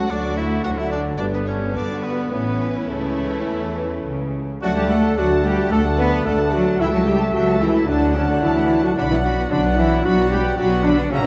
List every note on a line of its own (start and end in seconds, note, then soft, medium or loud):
0.00 0.10 C#2 medium
0.00 0.10 A3 medium
0.00 0.11 F#4 medium
0.00 0.12 F#4 medium
0.00 0.11 F#5 medium
0.10 0.63 D2 medium
0.10 0.64 D2 medium
0.10 0.63 F#3 medium
0.10 0.61 F#3 medium
0.10 1.18 A3 medium
0.10 0.36 D4 medium
0.10 0.37 D4 medium
0.10 0.64 F#4 medium
0.10 0.61 A4 medium
0.10 0.37 D5 medium
0.10 0.38 D5 medium
0.37 0.63 E4 medium
0.37 0.65 E4 medium
0.37 0.45 E5 medium
0.37 0.65 E5 medium
0.63 1.20 D2 medium
0.63 1.20 D3 medium
0.63 1.18 F#3 medium
0.63 1.22 F#3 medium
0.63 1.18 D4 medium
0.63 0.78 F#4 medium
0.63 0.79 F#4 medium
0.63 1.22 A4 medium
0.63 0.70 F#5 medium
0.78 0.91 E4 medium
0.78 0.85 E4 medium
0.78 0.92 E5 medium
0.91 1.04 D4 medium
0.91 1.05 D4 medium
0.91 0.99 D5 medium
0.91 1.19 D5 medium
1.18 1.74 G1 medium
1.18 1.74 G2 medium
1.18 1.74 D3 medium
1.18 1.75 G3 medium
1.18 2.30 B3 medium
1.18 1.74 D4 medium
1.18 1.25 D4 medium
1.18 1.33 D4 medium
1.18 1.75 B4 medium
1.18 1.24 D5 medium
1.18 1.33 D5 medium
1.33 1.47 B3 medium
1.33 1.48 B3 medium
1.33 1.39 B4 medium
1.33 1.47 B4 medium
1.46 1.74 C#4 medium
1.46 1.75 C#4 medium
1.46 1.54 C#5 medium
1.46 1.75 C#5 medium
1.74 2.33 G2 medium
1.74 2.32 D3 medium
1.74 2.34 D3 medium
1.74 2.33 G3 medium
1.74 1.87 D4 medium
1.74 2.05 D4 medium
1.74 2.32 F#4 medium
1.74 2.32 B4 medium
1.74 2.02 D5 medium
1.74 2.03 D5 medium
2.02 2.31 B3 medium
2.02 2.33 B3 medium
2.02 2.29 B4 medium
2.02 2.30 B4 medium
2.31 2.89 A1 medium
2.31 2.89 A2 medium
2.31 4.38 E3 medium
2.31 2.90 E3 medium
2.31 2.89 B3 medium
2.31 2.70 B3 medium
2.31 4.41 C#4 medium
2.31 4.41 E4 medium
2.31 2.88 B4 medium
2.31 2.89 B4 medium
2.31 2.89 C#5 medium
2.88 3.47 C#2 medium
2.88 3.47 C#3 medium
2.88 4.31 E3 medium
2.88 4.30 A3 medium
2.88 4.32 A3 medium
2.88 4.33 A4 medium
2.88 4.34 A4 medium
2.88 4.31 C#5 medium
3.47 4.04 E2 medium
3.47 4.04 E3 medium
4.05 4.61 C#2 medium
4.05 4.61 C#3 medium
4.61 5.10 D2 medium
4.61 4.68 F#3 loud
4.61 4.75 A3 medium
4.61 5.13 A3 medium
4.61 4.68 F#4 loud
4.61 4.69 F#4 loud
4.61 5.13 D5 medium
4.61 4.75 D5 medium
4.61 5.13 F#5 medium
4.61 4.76 F#5 medium
4.61 5.12 A5 medium
4.75 4.89 F#3 medium
4.75 4.90 G3 medium
4.75 4.89 G4 medium
4.75 4.84 G4 medium
4.75 4.89 F#5 medium
4.75 4.90 A5 medium
4.89 5.03 A3 medium
4.89 5.17 A3 medium
4.89 5.16 A4 medium
4.89 5.17 A4 medium
4.89 5.03 D5 medium
4.89 5.03 F#5 medium
5.03 5.16 F#3 medium
5.03 5.17 F#5 medium
5.03 5.17 A5 medium
5.15 5.64 D2 medium
5.15 5.25 F#3 medium
5.15 5.29 A3 medium
5.15 5.70 A3 medium
5.15 5.29 F#4 medium
5.15 5.45 F#4 loud
5.15 5.69 D5 medium
5.15 5.29 D5 medium
5.15 5.29 F#5 medium
5.15 5.70 F#5 medium
5.15 5.68 A5 medium
5.29 5.43 F#3 medium
5.29 5.43 F#5 medium
5.29 5.45 A5 medium
5.43 5.71 G3 medium
5.43 5.57 A3 medium
5.43 5.70 G4 medium
5.43 5.57 G4 medium
5.43 5.57 D5 medium
5.43 5.58 F#5 medium
5.57 5.71 F#3 medium
5.57 5.71 F#5 medium
5.57 5.72 A5 medium
5.70 6.18 D2 medium
5.70 5.78 A3 medium
5.70 5.83 A3 medium
5.70 6.24 A3 medium
5.70 5.83 A4 medium
5.70 5.84 A4 loud
5.70 6.24 D5 medium
5.70 5.84 D5 medium
5.70 6.25 F#5 medium
5.70 5.84 F#5 medium
5.70 6.23 A5 medium
5.83 5.97 F#3 medium
5.83 5.98 F#5 medium
5.83 5.99 A5 medium
5.96 6.11 A3 medium
5.96 6.25 B3 medium
5.96 6.24 B4 medium
5.96 6.11 B4 medium
5.96 6.12 D5 medium
5.96 6.12 F#5 medium
6.09 6.24 F#3 medium
6.09 6.25 F#5 medium
6.09 6.26 A5 medium
6.24 6.73 D2 medium
6.24 6.37 A3 medium
6.24 6.33 A3 medium
6.24 6.79 A3 medium
6.24 6.37 A4 medium
6.24 6.52 A4 loud
6.24 6.82 D5 medium
6.24 6.38 D5 medium
6.24 6.82 F#5 medium
6.24 6.38 F#5 medium
6.24 6.78 A5 medium
6.38 6.52 F#3 medium
6.38 6.52 F#5 medium
6.38 6.52 A5 medium
6.51 6.79 F#3 medium
6.51 6.66 A3 medium
6.51 6.64 F#4 medium
6.51 6.79 F#4 loud
6.51 6.66 D5 medium
6.51 6.65 F#5 medium
6.66 6.79 F#3 medium
6.66 6.79 F#5 medium
6.66 6.80 A5 medium
6.78 7.27 C#2 medium
6.78 6.93 E3 medium
6.78 6.91 G3 medium
6.78 7.86 A3 medium
6.78 6.85 E4 medium
6.78 6.94 E4 medium
6.78 6.92 E5 medium
6.78 7.88 E5 medium
6.78 7.90 E5 medium
6.78 6.93 G5 medium
6.78 7.58 A5 medium
6.92 7.06 F#3 medium
6.92 7.06 A3 medium
6.92 6.99 F#4 medium
6.92 7.07 F#4 medium
6.92 7.07 C#5 medium
6.92 7.07 A5 medium
7.06 7.20 G3 medium
7.06 7.33 G3 medium
7.06 7.18 G4 loud
7.06 7.18 G4 medium
7.06 7.21 E5 medium
7.06 7.20 G5 medium
7.19 7.33 A3 medium
7.19 7.34 C#5 medium
7.19 7.33 A5 medium
7.33 7.81 C#2 medium
7.33 7.60 F#3 medium
7.33 7.46 G3 medium
7.33 7.59 F#4 loud
7.33 7.60 F#4 medium
7.33 7.46 E5 medium
7.33 7.46 G5 medium
7.46 7.60 A3 medium
7.46 7.60 C#5 medium
7.46 7.61 A5 medium
7.60 7.87 E3 medium
7.60 7.74 G3 medium
7.60 7.88 E4 medium
7.60 7.88 E4 loud
7.60 7.74 E5 medium
7.60 7.75 G5 medium
7.73 7.87 A3 medium
7.73 7.87 C#5 medium
7.77 7.89 A5 medium
7.86 8.36 D2 medium
7.86 8.14 D3 medium
7.86 8.94 F#3 medium
7.86 8.00 F#3 medium
7.86 8.14 D4 loud
7.86 8.15 D4 medium
7.86 8.00 D5 medium
7.86 8.97 D5 medium
7.86 8.95 F#5 medium
7.86 8.95 A5 medium
7.86 8.02 A5 medium
8.01 8.15 A3 medium
8.01 8.15 A4 medium
8.01 8.17 F#5 medium
8.15 8.29 C#3 medium
8.15 8.29 F#3 medium
8.15 8.21 C#4 loud
8.15 8.29 C#4 medium
8.15 8.28 D5 medium
8.15 8.30 A5 medium
8.28 8.42 D3 medium
8.28 8.42 A3 medium
8.28 8.42 D4 medium
8.28 8.43 D4 loud
8.28 8.42 A4 medium
8.33 8.44 F#5 medium
8.41 8.90 D2 medium
8.41 8.83 E3 medium
8.41 8.55 F#3 medium
8.41 8.82 E4 loud
8.41 8.82 E4 medium
8.41 8.55 D5 medium
8.41 8.57 A5 medium
8.56 8.70 A3 medium
8.56 8.71 A4 medium
8.56 8.71 F#5 medium
8.69 8.83 F#3 medium
8.69 8.83 D5 medium
8.69 8.85 A5 medium
8.83 8.97 F#3 medium
8.83 8.97 A3 medium
8.83 8.90 F#4 medium
8.83 8.90 F#4 loud
8.83 8.98 A4 medium
8.83 8.98 F#5 medium
8.96 9.44 B1 medium
8.96 9.02 D3 medium
8.96 9.50 F#3 medium
8.96 9.09 D4 medium
8.96 9.03 D4 loud
8.96 9.11 D4 loud
8.96 9.50 D5 medium
8.96 9.11 D5 medium
8.96 9.50 F#5 medium
8.96 9.11 B5 medium
9.10 9.16 E3 medium
9.10 9.24 B3 medium
9.10 9.16 E4 medium
9.10 9.24 E4 loud
9.10 9.25 B4 medium
9.10 9.25 F#5 medium
9.22 9.32 F#3 medium
9.22 9.36 D4 medium
9.22 9.50 F#4 loud
9.22 9.50 F#4 medium
9.22 9.38 D5 medium
9.22 9.38 B5 medium
9.37 9.50 B3 medium
9.37 9.51 B4 medium
9.37 9.52 F#5 medium
9.50 9.97 B1 medium
9.50 9.59 D3 medium
9.50 10.03 F#3 medium
9.50 9.63 D4 medium
9.50 9.77 D4 medium
9.50 9.77 D4 loud
9.50 10.03 D5 medium
9.50 9.63 D5 medium
9.50 10.02 F#5 medium
9.50 10.03 F#5 medium
9.50 9.64 B5 medium
9.64 9.77 B3 medium
9.64 9.78 B4 medium
9.64 9.79 F#5 medium
9.76 10.03 E3 medium
9.76 9.90 D4 medium
9.76 10.03 E4 loud
9.76 10.03 E4 medium
9.76 9.91 D5 medium
9.82 9.93 B5 medium
9.90 10.04 B3 medium
9.90 10.04 B4 medium
9.90 10.05 F#5 medium
10.03 10.51 B1 medium
10.03 10.56 F#3 medium
10.03 10.30 F#3 loud
10.03 10.16 D4 medium
10.03 10.30 F#4 loud
10.03 10.31 F#4 medium
10.03 10.16 D5 medium
10.03 10.56 D5 medium
10.03 10.55 F#5 medium
10.03 10.56 F#5 medium
10.03 10.17 B5 medium
10.17 10.30 B3 medium
10.17 10.31 B4 medium
10.21 10.32 F#5 medium
10.29 10.40 G3 medium
10.29 10.44 D4 medium
10.29 10.56 G4 loud
10.29 10.57 G4 loud
10.29 10.44 D5 medium
10.34 10.45 B5 medium
10.43 10.57 B3 medium
10.43 10.57 B4 medium
10.48 10.59 F#5 medium
10.56 11.04 B1 medium
10.56 10.91 F#3 medium
10.56 10.84 F#3 medium
10.56 10.69 D4 medium
10.56 10.83 F#4 medium
10.56 10.70 F#4 loud
10.56 10.69 D5 medium
10.56 10.91 D5 medium
10.56 11.09 F#5 medium
10.56 10.91 F#5 medium
10.62 10.72 B5 medium
10.70 10.84 B3 medium
10.70 10.84 B4 medium
10.70 10.85 F#5 medium
10.83 11.11 D3 medium
10.83 10.96 D4 medium
10.83 10.96 D4 loud
10.83 11.10 D4 medium
10.83 10.97 D5 medium
10.83 10.98 B5 medium
10.97 11.10 B3 medium
10.97 11.10 B4 medium
10.97 11.11 F#5 medium
11.09 11.27 A#1 medium
11.09 11.23 C#3 loud
11.09 11.27 F#3 medium
11.09 11.22 A#3 medium
11.09 11.23 C#4 loud
11.09 11.16 C#4 loud
11.09 11.27 C#5 medium
11.09 11.23 E5 medium
11.09 11.27 E5 medium
11.09 11.27 F#5 medium
11.09 11.24 A#5 medium
11.23 11.27 E3 medium
11.23 11.27 C#4 medium
11.23 11.27 E4 medium